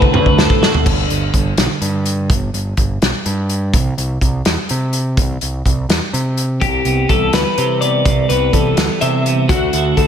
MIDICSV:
0, 0, Header, 1, 5, 480
1, 0, Start_track
1, 0, Key_signature, 1, "major"
1, 0, Tempo, 479616
1, 859, Time_signature, 6, 3, 24, 8
1, 10080, End_track
2, 0, Start_track
2, 0, Title_t, "Clean electric guitar"
2, 0, Program_c, 0, 27
2, 0, Note_on_c, 0, 71, 81
2, 123, Note_off_c, 0, 71, 0
2, 135, Note_on_c, 0, 71, 75
2, 375, Note_off_c, 0, 71, 0
2, 375, Note_on_c, 0, 69, 80
2, 856, Note_off_c, 0, 69, 0
2, 6620, Note_on_c, 0, 67, 84
2, 7098, Note_on_c, 0, 69, 71
2, 7100, Note_off_c, 0, 67, 0
2, 7339, Note_off_c, 0, 69, 0
2, 7347, Note_on_c, 0, 71, 81
2, 7813, Note_off_c, 0, 71, 0
2, 7817, Note_on_c, 0, 74, 80
2, 8294, Note_off_c, 0, 74, 0
2, 8298, Note_on_c, 0, 71, 67
2, 8534, Note_off_c, 0, 71, 0
2, 8534, Note_on_c, 0, 69, 72
2, 9016, Note_off_c, 0, 69, 0
2, 9020, Note_on_c, 0, 76, 76
2, 9500, Note_on_c, 0, 66, 85
2, 9502, Note_off_c, 0, 76, 0
2, 9980, Note_on_c, 0, 69, 72
2, 9982, Note_off_c, 0, 66, 0
2, 10080, Note_off_c, 0, 69, 0
2, 10080, End_track
3, 0, Start_track
3, 0, Title_t, "Clean electric guitar"
3, 0, Program_c, 1, 27
3, 0, Note_on_c, 1, 50, 76
3, 0, Note_on_c, 1, 57, 63
3, 0, Note_on_c, 1, 60, 66
3, 0, Note_on_c, 1, 66, 75
3, 139, Note_off_c, 1, 66, 0
3, 151, Note_on_c, 1, 66, 59
3, 379, Note_off_c, 1, 60, 0
3, 379, Note_on_c, 1, 45, 67
3, 391, Note_on_c, 1, 60, 67
3, 610, Note_off_c, 1, 66, 0
3, 622, Note_on_c, 1, 66, 65
3, 831, Note_off_c, 1, 66, 0
3, 834, Note_off_c, 1, 57, 0
3, 836, Note_off_c, 1, 60, 0
3, 858, Note_off_c, 1, 45, 0
3, 2303, Note_off_c, 1, 50, 0
3, 6617, Note_on_c, 1, 48, 73
3, 6874, Note_on_c, 1, 59, 63
3, 7099, Note_off_c, 1, 48, 0
3, 7099, Note_on_c, 1, 52, 57
3, 7108, Note_on_c, 1, 55, 54
3, 7346, Note_off_c, 1, 59, 0
3, 7350, Note_on_c, 1, 59, 56
3, 7587, Note_on_c, 1, 48, 64
3, 7593, Note_on_c, 1, 67, 62
3, 7825, Note_off_c, 1, 59, 0
3, 7837, Note_on_c, 1, 59, 61
3, 8031, Note_off_c, 1, 52, 0
3, 8035, Note_off_c, 1, 48, 0
3, 8038, Note_off_c, 1, 67, 0
3, 8068, Note_on_c, 1, 48, 70
3, 8300, Note_off_c, 1, 59, 0
3, 8312, Note_on_c, 1, 59, 62
3, 8529, Note_off_c, 1, 55, 0
3, 8536, Note_on_c, 1, 52, 55
3, 8541, Note_on_c, 1, 55, 57
3, 8545, Note_off_c, 1, 48, 0
3, 8768, Note_off_c, 1, 59, 0
3, 8780, Note_on_c, 1, 59, 57
3, 9026, Note_on_c, 1, 48, 65
3, 9030, Note_on_c, 1, 67, 58
3, 9262, Note_off_c, 1, 59, 0
3, 9273, Note_on_c, 1, 59, 60
3, 9471, Note_off_c, 1, 52, 0
3, 9476, Note_off_c, 1, 48, 0
3, 9478, Note_off_c, 1, 67, 0
3, 9494, Note_on_c, 1, 50, 74
3, 9503, Note_off_c, 1, 55, 0
3, 9508, Note_off_c, 1, 59, 0
3, 9508, Note_on_c, 1, 57, 66
3, 9512, Note_on_c, 1, 60, 61
3, 9518, Note_on_c, 1, 66, 58
3, 9740, Note_off_c, 1, 66, 0
3, 9744, Note_on_c, 1, 64, 68
3, 9853, Note_off_c, 1, 64, 0
3, 9853, Note_on_c, 1, 66, 50
3, 9979, Note_off_c, 1, 60, 0
3, 9981, Note_off_c, 1, 57, 0
3, 9985, Note_on_c, 1, 57, 59
3, 9991, Note_on_c, 1, 60, 55
3, 10080, Note_off_c, 1, 50, 0
3, 10080, Note_off_c, 1, 57, 0
3, 10080, Note_off_c, 1, 60, 0
3, 10080, Note_off_c, 1, 66, 0
3, 10080, End_track
4, 0, Start_track
4, 0, Title_t, "Picked electric bass"
4, 0, Program_c, 2, 34
4, 0, Note_on_c, 2, 36, 86
4, 150, Note_on_c, 2, 50, 91
4, 165, Note_off_c, 2, 36, 0
4, 262, Note_on_c, 2, 38, 76
4, 277, Note_off_c, 2, 50, 0
4, 454, Note_off_c, 2, 38, 0
4, 861, Note_on_c, 2, 31, 97
4, 1054, Note_off_c, 2, 31, 0
4, 1099, Note_on_c, 2, 31, 81
4, 1292, Note_off_c, 2, 31, 0
4, 1340, Note_on_c, 2, 31, 86
4, 1532, Note_off_c, 2, 31, 0
4, 1574, Note_on_c, 2, 35, 87
4, 1672, Note_off_c, 2, 35, 0
4, 1815, Note_on_c, 2, 43, 70
4, 2297, Note_on_c, 2, 31, 85
4, 2312, Note_off_c, 2, 43, 0
4, 2491, Note_off_c, 2, 31, 0
4, 2537, Note_on_c, 2, 31, 78
4, 2730, Note_off_c, 2, 31, 0
4, 2781, Note_on_c, 2, 31, 88
4, 2973, Note_off_c, 2, 31, 0
4, 3022, Note_on_c, 2, 35, 92
4, 3117, Note_off_c, 2, 35, 0
4, 3261, Note_on_c, 2, 43, 78
4, 3739, Note_on_c, 2, 36, 89
4, 3754, Note_off_c, 2, 43, 0
4, 3932, Note_off_c, 2, 36, 0
4, 3979, Note_on_c, 2, 36, 80
4, 4172, Note_off_c, 2, 36, 0
4, 4218, Note_on_c, 2, 36, 89
4, 4412, Note_off_c, 2, 36, 0
4, 4463, Note_on_c, 2, 40, 89
4, 4558, Note_off_c, 2, 40, 0
4, 4708, Note_on_c, 2, 48, 79
4, 5176, Note_on_c, 2, 36, 95
4, 5191, Note_off_c, 2, 48, 0
4, 5371, Note_off_c, 2, 36, 0
4, 5429, Note_on_c, 2, 36, 79
4, 5618, Note_off_c, 2, 36, 0
4, 5660, Note_on_c, 2, 36, 89
4, 5853, Note_off_c, 2, 36, 0
4, 5892, Note_on_c, 2, 40, 86
4, 5992, Note_off_c, 2, 40, 0
4, 6138, Note_on_c, 2, 48, 76
4, 6623, Note_on_c, 2, 36, 93
4, 6638, Note_off_c, 2, 48, 0
4, 6816, Note_off_c, 2, 36, 0
4, 6855, Note_on_c, 2, 36, 75
4, 7051, Note_off_c, 2, 36, 0
4, 7098, Note_on_c, 2, 36, 78
4, 7293, Note_off_c, 2, 36, 0
4, 7340, Note_on_c, 2, 38, 80
4, 7437, Note_off_c, 2, 38, 0
4, 7585, Note_on_c, 2, 48, 82
4, 8062, Note_on_c, 2, 36, 89
4, 8077, Note_off_c, 2, 48, 0
4, 8255, Note_off_c, 2, 36, 0
4, 8305, Note_on_c, 2, 36, 86
4, 8497, Note_off_c, 2, 36, 0
4, 8541, Note_on_c, 2, 36, 87
4, 8735, Note_off_c, 2, 36, 0
4, 8781, Note_on_c, 2, 38, 83
4, 8878, Note_off_c, 2, 38, 0
4, 9025, Note_on_c, 2, 48, 76
4, 9498, Note_on_c, 2, 38, 86
4, 9513, Note_off_c, 2, 48, 0
4, 9694, Note_off_c, 2, 38, 0
4, 9739, Note_on_c, 2, 38, 80
4, 9935, Note_off_c, 2, 38, 0
4, 9980, Note_on_c, 2, 38, 83
4, 10080, Note_off_c, 2, 38, 0
4, 10080, End_track
5, 0, Start_track
5, 0, Title_t, "Drums"
5, 21, Note_on_c, 9, 36, 72
5, 121, Note_off_c, 9, 36, 0
5, 138, Note_on_c, 9, 45, 95
5, 238, Note_off_c, 9, 45, 0
5, 260, Note_on_c, 9, 36, 67
5, 360, Note_off_c, 9, 36, 0
5, 385, Note_on_c, 9, 38, 105
5, 485, Note_off_c, 9, 38, 0
5, 500, Note_on_c, 9, 36, 77
5, 600, Note_off_c, 9, 36, 0
5, 628, Note_on_c, 9, 38, 100
5, 728, Note_off_c, 9, 38, 0
5, 745, Note_on_c, 9, 43, 88
5, 845, Note_off_c, 9, 43, 0
5, 860, Note_on_c, 9, 36, 104
5, 863, Note_on_c, 9, 49, 91
5, 961, Note_off_c, 9, 36, 0
5, 963, Note_off_c, 9, 49, 0
5, 1104, Note_on_c, 9, 42, 55
5, 1204, Note_off_c, 9, 42, 0
5, 1338, Note_on_c, 9, 36, 72
5, 1340, Note_on_c, 9, 42, 57
5, 1438, Note_off_c, 9, 36, 0
5, 1440, Note_off_c, 9, 42, 0
5, 1577, Note_on_c, 9, 42, 86
5, 1583, Note_on_c, 9, 38, 112
5, 1677, Note_off_c, 9, 42, 0
5, 1683, Note_off_c, 9, 38, 0
5, 1818, Note_on_c, 9, 42, 59
5, 1918, Note_off_c, 9, 42, 0
5, 2057, Note_on_c, 9, 42, 62
5, 2157, Note_off_c, 9, 42, 0
5, 2299, Note_on_c, 9, 36, 109
5, 2305, Note_on_c, 9, 42, 81
5, 2399, Note_off_c, 9, 36, 0
5, 2405, Note_off_c, 9, 42, 0
5, 2544, Note_on_c, 9, 42, 56
5, 2644, Note_off_c, 9, 42, 0
5, 2775, Note_on_c, 9, 42, 57
5, 2777, Note_on_c, 9, 36, 69
5, 2875, Note_off_c, 9, 42, 0
5, 2877, Note_off_c, 9, 36, 0
5, 3022, Note_on_c, 9, 42, 73
5, 3028, Note_on_c, 9, 38, 107
5, 3122, Note_off_c, 9, 42, 0
5, 3128, Note_off_c, 9, 38, 0
5, 3260, Note_on_c, 9, 42, 57
5, 3360, Note_off_c, 9, 42, 0
5, 3498, Note_on_c, 9, 42, 58
5, 3598, Note_off_c, 9, 42, 0
5, 3738, Note_on_c, 9, 36, 106
5, 3740, Note_on_c, 9, 42, 79
5, 3838, Note_off_c, 9, 36, 0
5, 3840, Note_off_c, 9, 42, 0
5, 3984, Note_on_c, 9, 42, 54
5, 4084, Note_off_c, 9, 42, 0
5, 4218, Note_on_c, 9, 36, 67
5, 4222, Note_on_c, 9, 42, 53
5, 4318, Note_off_c, 9, 36, 0
5, 4322, Note_off_c, 9, 42, 0
5, 4456, Note_on_c, 9, 42, 78
5, 4462, Note_on_c, 9, 38, 107
5, 4556, Note_off_c, 9, 42, 0
5, 4562, Note_off_c, 9, 38, 0
5, 4696, Note_on_c, 9, 42, 67
5, 4796, Note_off_c, 9, 42, 0
5, 4932, Note_on_c, 9, 42, 61
5, 5032, Note_off_c, 9, 42, 0
5, 5177, Note_on_c, 9, 36, 104
5, 5180, Note_on_c, 9, 42, 74
5, 5278, Note_off_c, 9, 36, 0
5, 5280, Note_off_c, 9, 42, 0
5, 5417, Note_on_c, 9, 42, 63
5, 5517, Note_off_c, 9, 42, 0
5, 5660, Note_on_c, 9, 36, 73
5, 5667, Note_on_c, 9, 42, 62
5, 5760, Note_off_c, 9, 36, 0
5, 5767, Note_off_c, 9, 42, 0
5, 5901, Note_on_c, 9, 42, 85
5, 5907, Note_on_c, 9, 38, 99
5, 6001, Note_off_c, 9, 42, 0
5, 6007, Note_off_c, 9, 38, 0
5, 6146, Note_on_c, 9, 42, 64
5, 6246, Note_off_c, 9, 42, 0
5, 6380, Note_on_c, 9, 42, 63
5, 6480, Note_off_c, 9, 42, 0
5, 6620, Note_on_c, 9, 36, 101
5, 6620, Note_on_c, 9, 42, 78
5, 6720, Note_off_c, 9, 36, 0
5, 6720, Note_off_c, 9, 42, 0
5, 6857, Note_on_c, 9, 42, 51
5, 6957, Note_off_c, 9, 42, 0
5, 7099, Note_on_c, 9, 36, 71
5, 7100, Note_on_c, 9, 42, 53
5, 7199, Note_off_c, 9, 36, 0
5, 7201, Note_off_c, 9, 42, 0
5, 7335, Note_on_c, 9, 42, 77
5, 7341, Note_on_c, 9, 38, 103
5, 7435, Note_off_c, 9, 42, 0
5, 7441, Note_off_c, 9, 38, 0
5, 7583, Note_on_c, 9, 42, 59
5, 7683, Note_off_c, 9, 42, 0
5, 7823, Note_on_c, 9, 42, 53
5, 7923, Note_off_c, 9, 42, 0
5, 8062, Note_on_c, 9, 36, 97
5, 8065, Note_on_c, 9, 42, 73
5, 8162, Note_off_c, 9, 36, 0
5, 8165, Note_off_c, 9, 42, 0
5, 8303, Note_on_c, 9, 42, 57
5, 8403, Note_off_c, 9, 42, 0
5, 8540, Note_on_c, 9, 36, 73
5, 8542, Note_on_c, 9, 42, 59
5, 8640, Note_off_c, 9, 36, 0
5, 8642, Note_off_c, 9, 42, 0
5, 8779, Note_on_c, 9, 42, 84
5, 8785, Note_on_c, 9, 38, 102
5, 8879, Note_off_c, 9, 42, 0
5, 8885, Note_off_c, 9, 38, 0
5, 9020, Note_on_c, 9, 42, 64
5, 9120, Note_off_c, 9, 42, 0
5, 9267, Note_on_c, 9, 42, 63
5, 9367, Note_off_c, 9, 42, 0
5, 9500, Note_on_c, 9, 36, 109
5, 9505, Note_on_c, 9, 42, 82
5, 9600, Note_off_c, 9, 36, 0
5, 9605, Note_off_c, 9, 42, 0
5, 9738, Note_on_c, 9, 42, 64
5, 9838, Note_off_c, 9, 42, 0
5, 9980, Note_on_c, 9, 36, 68
5, 9983, Note_on_c, 9, 42, 63
5, 10080, Note_off_c, 9, 36, 0
5, 10080, Note_off_c, 9, 42, 0
5, 10080, End_track
0, 0, End_of_file